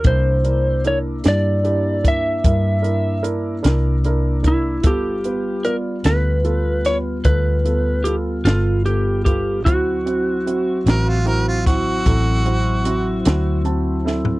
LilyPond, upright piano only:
\new Staff \with { instrumentName = "Upright piano" } { \time 12/8 \key c \major \tempo 4. = 50 <d' e' bes'>8 <d' e' bes'>8 <d' e' bes'>8 <d' e' g'>8 <d' e' g'>8 <d' e' bes'>8 <d' e' bes'>8 <d' e' bes'>8 <d' e' bes'>8 <d' e' bes'>8 <d' e' bes'>8 <d' e' bes'>8 | <b f' a'>8 <b f' b'>8 <b f' d''>8 <b f' a'>8 <b f' a'>8 <b f' b'>8 <b f' a'>8 <b f' a'>8 <b f' a'>8 <b f' a'>8 <b f' a'>8 <b f' a'>8 | <c' e' fis'>8 <c' e' fis'>8 <c' e' fis'>8 <c' e' fis'>8 <c' e' fis'>8 <c' e' fis'>8 <c' e' a'>8 <c' e' fis'>8 <c' e' fis'>8 <c' e' fis'>8 <c' e' fis' a''>8 <c' e' a' e''>8 | }